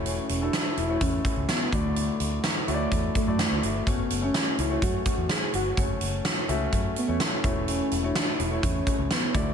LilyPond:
<<
  \new Staff \with { instrumentName = "Grand piano" } { \time 4/4 \key a \major \tempo 4 = 126 <a e' fis' cis''>8 r16 <a e' fis' a'>8. r16 <a e' fis' cis''>4. r16 <a e' fis' d''>8~ | <a e' fis' d''>4 r8 <a e' fis' cis'' d''>4 r16 <a e' fis' d''>4 r16 | <a cis' fis' cis''>8 r16 <a cis' fis' cis''>8. r16 <a cis' fis' cis''>4. r8. | <a cis' fis' cis''>4~ <a cis' fis' cis''>16 r16 <a cis' fis' e''>4 r16 <a cis' fis' cis''>8. <a e' fis' cis''>8~ |
<a e' fis' cis''>8 r16 <a e' fis' cis''>8. r16 <a e' fis' cis''>4. r16 <a e' fis' d''>8 | }
  \new Staff \with { instrumentName = "Grand piano" } { \clef bass \time 4/4 \key a \major e4 r2 r8 d8~ | d4 r2. | r1 | r2. r8 e8~ |
e4 r2 r8 d8 | }
  \new Staff \with { instrumentName = "Soft synth lead" } { \time 4/4 \key a \major cis'8. d'8. e'8 cis'4 b8 a8~ | a2~ a8 a4. | b8. cis'8. e'8 fis'4 gis'8 fis'8~ | fis'8 r2 b8 cis'4 |
cis'8. d'8. e'8 cis'4 b8 a8 | }
  \new Staff \with { instrumentName = "Fingered electric bass" } { \clef bass \time 4/4 \key a \major e,,8 e,,8 r8 e,,8 e,8 r16 cis,16 r8 d,8~ | d,8 d,8 r8 d,8 e,8 r16 fis,8 d,16 g,,8 | fis,,8 fis,,8 r8 cis,8 fis,8 r16 e,16 r8 g,,8 | fis,,8 fis,,8 r8 cis,8 fis,8 r16 e,16 r8 e,,8~ |
e,,8 e,,8 r8 e,,8 e,8 r16 cis,16 r8 d,8 | }
  \new DrumStaff \with { instrumentName = "Drums" } \drummode { \time 4/4 hh8 hh8 <hh sn>8 hh8 <hh bd>8 <hh bd>8 <hh sn>8 <hh bd>8 | hh8 hh8 <hh sn>8 hh8 <hh bd>8 <hh bd>8 <hh sn>8 hh8 | <hh bd>8 hh8 <hh sn>8 hh8 <hh bd>8 <hh bd>8 <hh sn>8 hh8 | <hh bd>8 hh8 <hh sn>8 hh8 <hh bd>8 hh8 <hh sn>8 <hh bd>8 |
hh8 hh8 <hh sn>8 hh8 <hh bd>8 <hh bd>8 <hh sn>8 <hh bd>8 | }
>>